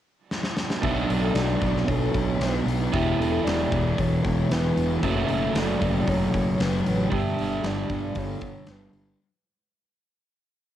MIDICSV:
0, 0, Header, 1, 7, 480
1, 0, Start_track
1, 0, Key_signature, 2, "minor"
1, 0, Tempo, 523560
1, 765, Time_signature, 4, 2, 24, 8
1, 9860, End_track
2, 0, Start_track
2, 0, Title_t, "Soft synth lead"
2, 0, Program_c, 0, 80
2, 756, Note_on_c, 0, 76, 107
2, 1229, Note_on_c, 0, 74, 97
2, 1243, Note_off_c, 0, 76, 0
2, 1720, Note_on_c, 0, 73, 97
2, 1734, Note_off_c, 0, 74, 0
2, 2197, Note_on_c, 0, 71, 94
2, 2210, Note_off_c, 0, 73, 0
2, 2565, Note_off_c, 0, 71, 0
2, 2683, Note_on_c, 0, 76, 103
2, 3155, Note_on_c, 0, 74, 100
2, 3169, Note_off_c, 0, 76, 0
2, 3656, Note_on_c, 0, 73, 100
2, 3670, Note_off_c, 0, 74, 0
2, 4136, Note_on_c, 0, 71, 92
2, 4149, Note_off_c, 0, 73, 0
2, 4496, Note_off_c, 0, 71, 0
2, 4611, Note_on_c, 0, 76, 112
2, 5119, Note_on_c, 0, 74, 105
2, 5133, Note_off_c, 0, 76, 0
2, 5583, Note_on_c, 0, 73, 90
2, 5596, Note_off_c, 0, 74, 0
2, 6057, Note_on_c, 0, 71, 95
2, 6071, Note_off_c, 0, 73, 0
2, 6414, Note_off_c, 0, 71, 0
2, 6561, Note_on_c, 0, 76, 109
2, 7020, Note_on_c, 0, 74, 94
2, 7034, Note_off_c, 0, 76, 0
2, 7497, Note_on_c, 0, 73, 91
2, 7511, Note_off_c, 0, 74, 0
2, 7984, Note_on_c, 0, 71, 77
2, 7998, Note_off_c, 0, 73, 0
2, 8335, Note_off_c, 0, 71, 0
2, 9860, End_track
3, 0, Start_track
3, 0, Title_t, "Twelve-string acoustic guitar"
3, 0, Program_c, 1, 25
3, 770, Note_on_c, 1, 71, 82
3, 1003, Note_off_c, 1, 71, 0
3, 1007, Note_on_c, 1, 69, 76
3, 1246, Note_off_c, 1, 69, 0
3, 1250, Note_on_c, 1, 71, 82
3, 1490, Note_off_c, 1, 71, 0
3, 1493, Note_on_c, 1, 71, 75
3, 1734, Note_off_c, 1, 71, 0
3, 1738, Note_on_c, 1, 69, 74
3, 1975, Note_off_c, 1, 69, 0
3, 1979, Note_on_c, 1, 71, 76
3, 2208, Note_off_c, 1, 71, 0
3, 2212, Note_on_c, 1, 64, 73
3, 2453, Note_off_c, 1, 64, 0
3, 2458, Note_on_c, 1, 66, 69
3, 2690, Note_on_c, 1, 71, 77
3, 2924, Note_off_c, 1, 71, 0
3, 2927, Note_on_c, 1, 69, 83
3, 3166, Note_off_c, 1, 69, 0
3, 3170, Note_on_c, 1, 71, 77
3, 3400, Note_off_c, 1, 71, 0
3, 3411, Note_on_c, 1, 71, 73
3, 3647, Note_off_c, 1, 71, 0
3, 3651, Note_on_c, 1, 69, 75
3, 3891, Note_off_c, 1, 69, 0
3, 3895, Note_on_c, 1, 71, 73
3, 4136, Note_off_c, 1, 71, 0
3, 4143, Note_on_c, 1, 64, 69
3, 4171, Note_off_c, 1, 66, 0
3, 4379, Note_off_c, 1, 64, 0
3, 4379, Note_on_c, 1, 66, 79
3, 4608, Note_on_c, 1, 71, 83
3, 4617, Note_off_c, 1, 66, 0
3, 4850, Note_off_c, 1, 71, 0
3, 4854, Note_on_c, 1, 69, 78
3, 5090, Note_off_c, 1, 69, 0
3, 5093, Note_on_c, 1, 71, 78
3, 5315, Note_off_c, 1, 71, 0
3, 5326, Note_on_c, 1, 71, 72
3, 5566, Note_off_c, 1, 71, 0
3, 5570, Note_on_c, 1, 69, 76
3, 5812, Note_off_c, 1, 69, 0
3, 5817, Note_on_c, 1, 71, 69
3, 6053, Note_off_c, 1, 71, 0
3, 6057, Note_on_c, 1, 64, 73
3, 6295, Note_off_c, 1, 64, 0
3, 6309, Note_on_c, 1, 66, 75
3, 6540, Note_off_c, 1, 66, 0
3, 6546, Note_on_c, 1, 71, 78
3, 6777, Note_off_c, 1, 71, 0
3, 6780, Note_on_c, 1, 69, 76
3, 7011, Note_off_c, 1, 69, 0
3, 7015, Note_on_c, 1, 71, 80
3, 7239, Note_off_c, 1, 71, 0
3, 7250, Note_on_c, 1, 71, 80
3, 7489, Note_off_c, 1, 71, 0
3, 7492, Note_on_c, 1, 69, 73
3, 7724, Note_off_c, 1, 69, 0
3, 7728, Note_on_c, 1, 71, 69
3, 7967, Note_off_c, 1, 71, 0
3, 7981, Note_on_c, 1, 64, 79
3, 8214, Note_off_c, 1, 64, 0
3, 8227, Note_on_c, 1, 66, 68
3, 8456, Note_off_c, 1, 66, 0
3, 9860, End_track
4, 0, Start_track
4, 0, Title_t, "Overdriven electric guitar"
4, 0, Program_c, 2, 29
4, 749, Note_on_c, 2, 47, 69
4, 753, Note_on_c, 2, 54, 87
4, 764, Note_on_c, 2, 59, 86
4, 771, Note_on_c, 2, 62, 87
4, 778, Note_on_c, 2, 66, 96
4, 2672, Note_off_c, 2, 47, 0
4, 2676, Note_off_c, 2, 54, 0
4, 2679, Note_off_c, 2, 59, 0
4, 2679, Note_on_c, 2, 52, 91
4, 2682, Note_off_c, 2, 62, 0
4, 2689, Note_on_c, 2, 59, 82
4, 2702, Note_on_c, 2, 64, 80
4, 2705, Note_off_c, 2, 66, 0
4, 2709, Note_on_c, 2, 67, 86
4, 4594, Note_off_c, 2, 52, 0
4, 4599, Note_off_c, 2, 59, 0
4, 4606, Note_off_c, 2, 64, 0
4, 4609, Note_off_c, 2, 67, 0
4, 4609, Note_on_c, 2, 54, 76
4, 4622, Note_on_c, 2, 57, 97
4, 4630, Note_on_c, 2, 61, 81
4, 4639, Note_on_c, 2, 66, 92
4, 6507, Note_off_c, 2, 54, 0
4, 6510, Note_on_c, 2, 55, 80
4, 6520, Note_off_c, 2, 57, 0
4, 6524, Note_on_c, 2, 59, 78
4, 6525, Note_off_c, 2, 61, 0
4, 6529, Note_off_c, 2, 66, 0
4, 6530, Note_on_c, 2, 62, 98
4, 6546, Note_on_c, 2, 67, 97
4, 8421, Note_off_c, 2, 55, 0
4, 8428, Note_off_c, 2, 59, 0
4, 8431, Note_off_c, 2, 62, 0
4, 8439, Note_off_c, 2, 67, 0
4, 9860, End_track
5, 0, Start_track
5, 0, Title_t, "Distorted electric guitar"
5, 0, Program_c, 3, 30
5, 762, Note_on_c, 3, 47, 80
5, 778, Note_on_c, 3, 54, 90
5, 791, Note_on_c, 3, 59, 94
5, 1473, Note_off_c, 3, 47, 0
5, 1478, Note_off_c, 3, 59, 0
5, 1482, Note_on_c, 3, 59, 82
5, 1493, Note_off_c, 3, 54, 0
5, 1497, Note_on_c, 3, 54, 75
5, 1508, Note_on_c, 3, 47, 66
5, 2184, Note_off_c, 3, 47, 0
5, 2194, Note_off_c, 3, 59, 0
5, 2195, Note_on_c, 3, 47, 66
5, 2205, Note_off_c, 3, 54, 0
5, 2209, Note_on_c, 3, 54, 77
5, 2221, Note_on_c, 3, 59, 74
5, 2671, Note_off_c, 3, 47, 0
5, 2677, Note_on_c, 3, 40, 86
5, 2683, Note_off_c, 3, 59, 0
5, 2691, Note_on_c, 3, 47, 99
5, 2703, Note_off_c, 3, 54, 0
5, 2707, Note_on_c, 3, 52, 92
5, 3393, Note_off_c, 3, 40, 0
5, 3396, Note_off_c, 3, 52, 0
5, 3400, Note_off_c, 3, 47, 0
5, 3407, Note_on_c, 3, 52, 78
5, 3421, Note_on_c, 3, 47, 72
5, 3432, Note_on_c, 3, 40, 73
5, 4112, Note_off_c, 3, 40, 0
5, 4117, Note_off_c, 3, 52, 0
5, 4123, Note_on_c, 3, 40, 66
5, 4124, Note_off_c, 3, 47, 0
5, 4140, Note_on_c, 3, 47, 69
5, 4152, Note_on_c, 3, 52, 79
5, 4595, Note_off_c, 3, 40, 0
5, 4601, Note_on_c, 3, 42, 92
5, 4604, Note_off_c, 3, 47, 0
5, 4609, Note_off_c, 3, 52, 0
5, 4617, Note_on_c, 3, 49, 93
5, 4626, Note_on_c, 3, 54, 99
5, 5306, Note_off_c, 3, 54, 0
5, 5313, Note_off_c, 3, 42, 0
5, 5317, Note_on_c, 3, 54, 95
5, 5321, Note_off_c, 3, 49, 0
5, 5331, Note_on_c, 3, 49, 86
5, 5348, Note_on_c, 3, 42, 68
5, 6025, Note_off_c, 3, 42, 0
5, 6030, Note_off_c, 3, 54, 0
5, 6036, Note_on_c, 3, 42, 73
5, 6037, Note_off_c, 3, 49, 0
5, 6053, Note_on_c, 3, 49, 84
5, 6066, Note_on_c, 3, 54, 73
5, 6509, Note_off_c, 3, 42, 0
5, 6516, Note_on_c, 3, 43, 88
5, 6518, Note_off_c, 3, 49, 0
5, 6524, Note_off_c, 3, 54, 0
5, 6531, Note_on_c, 3, 50, 97
5, 6547, Note_on_c, 3, 55, 99
5, 7227, Note_off_c, 3, 43, 0
5, 7228, Note_off_c, 3, 55, 0
5, 7235, Note_off_c, 3, 50, 0
5, 7239, Note_on_c, 3, 55, 97
5, 7252, Note_on_c, 3, 50, 77
5, 7268, Note_on_c, 3, 43, 65
5, 7948, Note_off_c, 3, 55, 0
5, 7953, Note_off_c, 3, 43, 0
5, 7955, Note_off_c, 3, 50, 0
5, 7964, Note_on_c, 3, 43, 58
5, 7979, Note_on_c, 3, 50, 66
5, 7987, Note_on_c, 3, 55, 76
5, 8430, Note_off_c, 3, 43, 0
5, 8438, Note_off_c, 3, 50, 0
5, 8442, Note_off_c, 3, 55, 0
5, 9860, End_track
6, 0, Start_track
6, 0, Title_t, "Fingered electric bass"
6, 0, Program_c, 4, 33
6, 762, Note_on_c, 4, 35, 86
6, 944, Note_off_c, 4, 35, 0
6, 1011, Note_on_c, 4, 35, 77
6, 1190, Note_off_c, 4, 35, 0
6, 1236, Note_on_c, 4, 35, 76
6, 1421, Note_off_c, 4, 35, 0
6, 1486, Note_on_c, 4, 35, 81
6, 1668, Note_off_c, 4, 35, 0
6, 1723, Note_on_c, 4, 35, 80
6, 1907, Note_off_c, 4, 35, 0
6, 1968, Note_on_c, 4, 35, 91
6, 2150, Note_off_c, 4, 35, 0
6, 2191, Note_on_c, 4, 35, 77
6, 2380, Note_off_c, 4, 35, 0
6, 2439, Note_on_c, 4, 35, 84
6, 2625, Note_off_c, 4, 35, 0
6, 2689, Note_on_c, 4, 28, 89
6, 2871, Note_off_c, 4, 28, 0
6, 2916, Note_on_c, 4, 28, 75
6, 3103, Note_off_c, 4, 28, 0
6, 3160, Note_on_c, 4, 28, 79
6, 3346, Note_off_c, 4, 28, 0
6, 3410, Note_on_c, 4, 28, 81
6, 3592, Note_off_c, 4, 28, 0
6, 3654, Note_on_c, 4, 28, 83
6, 3835, Note_off_c, 4, 28, 0
6, 3895, Note_on_c, 4, 28, 91
6, 4075, Note_off_c, 4, 28, 0
6, 4129, Note_on_c, 4, 28, 87
6, 4312, Note_off_c, 4, 28, 0
6, 4371, Note_on_c, 4, 28, 84
6, 4553, Note_off_c, 4, 28, 0
6, 4607, Note_on_c, 4, 30, 86
6, 4791, Note_off_c, 4, 30, 0
6, 4847, Note_on_c, 4, 30, 73
6, 5030, Note_off_c, 4, 30, 0
6, 5085, Note_on_c, 4, 30, 85
6, 5269, Note_off_c, 4, 30, 0
6, 5331, Note_on_c, 4, 30, 85
6, 5513, Note_off_c, 4, 30, 0
6, 5567, Note_on_c, 4, 30, 86
6, 5750, Note_off_c, 4, 30, 0
6, 5804, Note_on_c, 4, 30, 81
6, 5987, Note_off_c, 4, 30, 0
6, 6052, Note_on_c, 4, 30, 84
6, 6232, Note_off_c, 4, 30, 0
6, 6297, Note_on_c, 4, 33, 78
6, 6475, Note_off_c, 4, 33, 0
6, 6522, Note_on_c, 4, 31, 91
6, 6705, Note_off_c, 4, 31, 0
6, 6779, Note_on_c, 4, 31, 83
6, 6956, Note_off_c, 4, 31, 0
6, 7001, Note_on_c, 4, 31, 89
6, 7184, Note_off_c, 4, 31, 0
6, 7238, Note_on_c, 4, 31, 82
6, 7422, Note_off_c, 4, 31, 0
6, 7470, Note_on_c, 4, 31, 85
6, 7657, Note_off_c, 4, 31, 0
6, 7711, Note_on_c, 4, 31, 82
6, 7897, Note_off_c, 4, 31, 0
6, 7958, Note_on_c, 4, 31, 83
6, 8141, Note_off_c, 4, 31, 0
6, 8190, Note_on_c, 4, 31, 78
6, 8376, Note_off_c, 4, 31, 0
6, 9860, End_track
7, 0, Start_track
7, 0, Title_t, "Drums"
7, 282, Note_on_c, 9, 38, 60
7, 374, Note_off_c, 9, 38, 0
7, 394, Note_on_c, 9, 38, 71
7, 486, Note_off_c, 9, 38, 0
7, 518, Note_on_c, 9, 38, 87
7, 609, Note_off_c, 9, 38, 0
7, 641, Note_on_c, 9, 38, 91
7, 733, Note_off_c, 9, 38, 0
7, 762, Note_on_c, 9, 36, 95
7, 764, Note_on_c, 9, 46, 68
7, 854, Note_off_c, 9, 36, 0
7, 856, Note_off_c, 9, 46, 0
7, 1011, Note_on_c, 9, 46, 61
7, 1102, Note_off_c, 9, 46, 0
7, 1243, Note_on_c, 9, 46, 75
7, 1247, Note_on_c, 9, 38, 109
7, 1335, Note_off_c, 9, 46, 0
7, 1339, Note_off_c, 9, 38, 0
7, 1484, Note_on_c, 9, 46, 54
7, 1485, Note_on_c, 9, 36, 80
7, 1575, Note_off_c, 9, 46, 0
7, 1577, Note_off_c, 9, 36, 0
7, 1620, Note_on_c, 9, 38, 28
7, 1711, Note_off_c, 9, 38, 0
7, 1729, Note_on_c, 9, 36, 84
7, 1730, Note_on_c, 9, 46, 71
7, 1820, Note_off_c, 9, 36, 0
7, 1821, Note_off_c, 9, 46, 0
7, 1969, Note_on_c, 9, 36, 85
7, 1972, Note_on_c, 9, 46, 60
7, 2061, Note_off_c, 9, 36, 0
7, 2064, Note_off_c, 9, 46, 0
7, 2213, Note_on_c, 9, 46, 68
7, 2217, Note_on_c, 9, 38, 94
7, 2304, Note_off_c, 9, 46, 0
7, 2309, Note_off_c, 9, 38, 0
7, 2462, Note_on_c, 9, 46, 58
7, 2554, Note_off_c, 9, 46, 0
7, 2693, Note_on_c, 9, 36, 104
7, 2696, Note_on_c, 9, 46, 72
7, 2785, Note_off_c, 9, 36, 0
7, 2788, Note_off_c, 9, 46, 0
7, 2952, Note_on_c, 9, 46, 55
7, 3044, Note_off_c, 9, 46, 0
7, 3184, Note_on_c, 9, 46, 77
7, 3189, Note_on_c, 9, 38, 107
7, 3276, Note_off_c, 9, 46, 0
7, 3280, Note_off_c, 9, 38, 0
7, 3414, Note_on_c, 9, 36, 88
7, 3421, Note_on_c, 9, 46, 54
7, 3505, Note_off_c, 9, 36, 0
7, 3513, Note_off_c, 9, 46, 0
7, 3653, Note_on_c, 9, 36, 82
7, 3657, Note_on_c, 9, 46, 69
7, 3744, Note_off_c, 9, 36, 0
7, 3748, Note_off_c, 9, 46, 0
7, 3892, Note_on_c, 9, 36, 77
7, 3894, Note_on_c, 9, 46, 56
7, 3984, Note_off_c, 9, 36, 0
7, 3986, Note_off_c, 9, 46, 0
7, 4137, Note_on_c, 9, 46, 63
7, 4141, Note_on_c, 9, 38, 98
7, 4228, Note_off_c, 9, 46, 0
7, 4233, Note_off_c, 9, 38, 0
7, 4377, Note_on_c, 9, 46, 55
7, 4468, Note_off_c, 9, 46, 0
7, 4611, Note_on_c, 9, 36, 97
7, 4611, Note_on_c, 9, 46, 63
7, 4702, Note_off_c, 9, 46, 0
7, 4703, Note_off_c, 9, 36, 0
7, 4843, Note_on_c, 9, 46, 55
7, 4935, Note_off_c, 9, 46, 0
7, 5090, Note_on_c, 9, 46, 82
7, 5095, Note_on_c, 9, 38, 108
7, 5182, Note_off_c, 9, 46, 0
7, 5186, Note_off_c, 9, 38, 0
7, 5332, Note_on_c, 9, 36, 85
7, 5334, Note_on_c, 9, 46, 61
7, 5424, Note_off_c, 9, 36, 0
7, 5426, Note_off_c, 9, 46, 0
7, 5568, Note_on_c, 9, 46, 76
7, 5569, Note_on_c, 9, 36, 79
7, 5660, Note_off_c, 9, 46, 0
7, 5661, Note_off_c, 9, 36, 0
7, 5811, Note_on_c, 9, 46, 58
7, 5812, Note_on_c, 9, 36, 78
7, 5903, Note_off_c, 9, 36, 0
7, 5903, Note_off_c, 9, 46, 0
7, 6052, Note_on_c, 9, 46, 73
7, 6057, Note_on_c, 9, 38, 100
7, 6144, Note_off_c, 9, 46, 0
7, 6149, Note_off_c, 9, 38, 0
7, 6292, Note_on_c, 9, 46, 54
7, 6384, Note_off_c, 9, 46, 0
7, 6522, Note_on_c, 9, 46, 77
7, 6526, Note_on_c, 9, 36, 96
7, 6614, Note_off_c, 9, 46, 0
7, 6618, Note_off_c, 9, 36, 0
7, 6772, Note_on_c, 9, 46, 59
7, 6864, Note_off_c, 9, 46, 0
7, 7003, Note_on_c, 9, 46, 71
7, 7007, Note_on_c, 9, 38, 105
7, 7095, Note_off_c, 9, 46, 0
7, 7099, Note_off_c, 9, 38, 0
7, 7237, Note_on_c, 9, 46, 56
7, 7240, Note_on_c, 9, 36, 88
7, 7329, Note_off_c, 9, 46, 0
7, 7332, Note_off_c, 9, 36, 0
7, 7473, Note_on_c, 9, 46, 72
7, 7479, Note_on_c, 9, 36, 83
7, 7565, Note_off_c, 9, 46, 0
7, 7570, Note_off_c, 9, 36, 0
7, 7711, Note_on_c, 9, 46, 55
7, 7716, Note_on_c, 9, 36, 83
7, 7803, Note_off_c, 9, 46, 0
7, 7808, Note_off_c, 9, 36, 0
7, 7945, Note_on_c, 9, 46, 65
7, 7949, Note_on_c, 9, 38, 106
7, 8036, Note_off_c, 9, 46, 0
7, 8041, Note_off_c, 9, 38, 0
7, 8188, Note_on_c, 9, 46, 57
7, 8280, Note_off_c, 9, 46, 0
7, 9860, End_track
0, 0, End_of_file